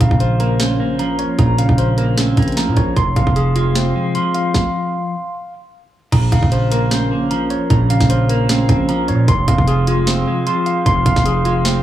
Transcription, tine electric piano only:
0.00 1.19 F5 medium
0.00 0.98 A#5 loud
0.20 1.39 C5 loud
0.40 1.58 A#4 medium
0.60 1.78 C#4 loud
0.80 1.98 A#3 medium
0.99 1.38 A#5 medium
1.19 2.37 C#5 medium
1.39 2.56 A#5 loud
1.58 2.77 F5 medium
1.78 2.97 C5 loud
1.98 2.97 A#4 medium
2.18 2.97 C#4 medium
2.37 2.97 C4 medium
2.57 2.97 A#5 loud
2.77 2.97 C#5 medium
2.96 4.14 C6 loud
3.16 4.33 F5 medium
3.36 4.54 G#4 medium
3.56 4.74 F4 medium
3.75 4.94 C4 medium
3.95 5.14 F3 medium
4.15 5.33 C6 medium
4.35 5.53 F5 medium
6.12 7.30 A#5 loud
6.32 7.51 F5 medium
6.52 7.70 C5 loud
6.72 7.90 A#4 medium
6.91 8.10 C#4 loud
7.11 8.29 A#3 medium
7.31 7.69 A#5 medium
7.50 8.69 C#5 medium
7.70 8.88 A#5 loud
7.90 9.08 F5 medium
8.10 9.28 C5 loud
8.29 9.28 A#4 medium
8.49 9.28 C#4 medium
8.69 9.28 C4 medium
8.89 9.28 A#5 loud
9.09 9.28 C#5 medium
9.28 10.45 C6 loud
9.48 10.65 F5 medium
9.68 10.86 G#4 loud
9.87 11.06 F4 medium
10.07 11.25 C4 medium
10.27 11.45 F3 medium
10.47 10.85 C6 loud
10.66 11.05 F5 medium
10.86 11.83 C6 loud
11.06 11.83 F5 loud
11.25 11.83 G#4 loud
11.45 11.83 F4 medium
11.65 11.83 C4 loud

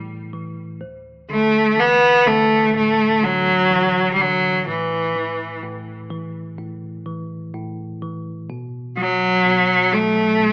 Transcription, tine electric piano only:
0.00 0.84 A2 soft
0.00 0.33 E3 soft
0.33 0.80 E3 soft
0.81 4.62 D2 soft
1.30 2.25 D3 soft
1.78 3.66 E3 soft
2.26 3.21 D3 soft
2.75 4.63 A2 soft
3.22 4.18 D3 soft
3.71 4.64 E3 soft
4.19 4.66 D3 soft
4.68 5.62 A2 medium
5.16 6.09 E3 soft
5.63 6.57 A2 soft
6.10 7.05 E3 medium
6.58 7.53 A2 soft
7.06 8.01 E3 soft
7.54 8.47 A2 soft
8.02 8.48 E3 soft
8.50 9.44 B2 medium
8.97 9.91 F#3 soft
9.45 10.39 B2 soft
9.92 10.53 F#3 soft
10.40 10.53 B2 soft

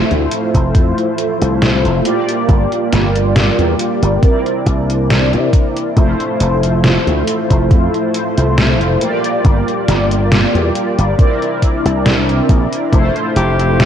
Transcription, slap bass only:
0.11 0.26 D2 loud
0.54 0.76 F1 medium
0.75 0.91 F2 medium
1.41 1.86 C2 medium
1.85 2.00 F1 medium
2.49 2.65 G1 medium
2.92 3.48 G1 medium
3.59 3.73 E2 loud
4.02 4.17 G1 medium
4.66 5.35 C2 medium
5.33 5.48 C3 medium
5.97 6.13 F1 medium
6.40 6.96 F1 medium
7.07 7.21 D2 loud
7.50 7.72 F1 medium
7.71 7.87 F2 medium
8.37 8.81 C2 medium
8.81 8.95 F1 medium
9.45 9.61 G1 medium
9.88 10.44 G1 medium
10.55 10.69 E2 loud
10.98 11.13 G1 medium
11.85 12.40 C2 medium
12.49 12.66 A#1 medium
12.93 13.09 F1 medium
13.36 13.85 F1 medium

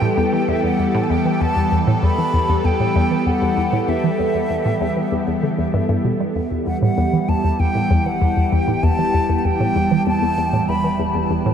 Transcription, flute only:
0.00 0.50 G5 loud
0.49 0.63 E5 medium
0.64 1.05 F#5 medium
1.03 1.12 A5 medium
1.11 1.43 G5 medium
1.41 1.76 A5 medium
2.03 2.66 B5 medium
2.65 3.28 G5 medium
3.27 3.90 F#5 medium
3.89 5.74 E5 medium
6.67 6.81 F#5 medium
6.82 7.30 F#5 medium
7.29 7.61 A5 medium
7.60 8.08 G5 medium
8.06 8.54 F#5 medium
8.53 8.85 G5 medium
8.84 9.38 A5 loud
9.38 9.47 A5 medium
9.45 10.06 G5 medium
10.07 10.70 A5 loud
10.69 11.15 B5 loud

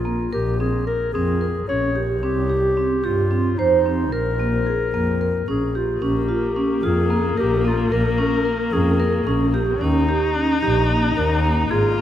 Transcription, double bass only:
0.00 0.24 A#1 medium
0.32 1.01 A#1 medium
1.14 1.60 F2 medium
1.68 2.24 A#1 medium
2.23 2.91 C2 medium
3.04 3.50 G2 medium
3.58 4.14 F2 medium
4.13 4.81 A#1 medium
4.93 5.39 F2 medium
5.48 5.94 A#1 medium
6.02 6.25 A#1 medium
6.83 7.29 F2 medium
7.37 7.83 A#1 medium
7.91 8.14 A#1 medium
8.72 9.18 F2 medium
9.26 9.72 A#1 medium
9.80 10.04 D#2 medium
10.62 11.08 A#1 medium
11.16 11.62 D#2 medium
11.70 11.93 G#1 medium

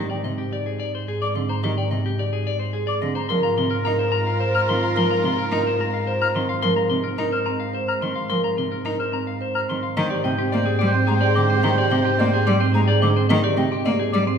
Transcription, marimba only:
0.00 0.15 G4 medium
0.25 0.42 C4 medium
0.53 0.70 G4 medium
1.08 1.26 G#4 medium
1.36 1.53 C4 medium
1.63 1.81 G4 medium
1.91 2.09 C4 medium
2.19 2.37 G4 medium
2.74 2.92 G#4 medium
3.02 3.20 C4 medium
3.30 3.48 A#4 medium
3.58 3.76 C4 medium
3.85 4.03 A#4 medium
4.40 4.59 C5 medium
4.68 4.87 C4 medium
4.96 5.14 A#4 medium
5.24 5.42 C4 medium
5.52 5.70 A#4 medium
6.07 6.26 C5 medium
6.35 6.53 C4 medium
6.63 6.81 A#4 loud
6.91 7.09 C4 medium
7.18 7.37 A#4 medium
7.46 7.64 C4 medium
7.74 7.92 C5 medium
8.01 8.20 C4 medium
8.30 8.48 A#4 medium
8.57 8.75 C4 medium
8.85 9.03 A#4 medium
9.13 9.31 C4 medium
9.41 9.59 C5 medium
9.69 9.87 C4 medium
10.11 10.29 G4 loud
10.38 10.56 C4 medium
10.67 10.84 G4 medium
10.95 11.12 C4 loud
11.22 11.40 G#4 medium
11.50 11.68 C4 medium
11.78 11.95 G4 loud
12.05 12.23 C4 medium
12.34 12.51 G4 medium
12.61 12.79 C4 loud
12.88 13.06 G#4 loud
13.16 13.34 C4 medium
13.44 13.62 G4 loud
13.71 13.90 C4 medium
13.99 14.17 G4 medium
14.27 14.38 C4 loud

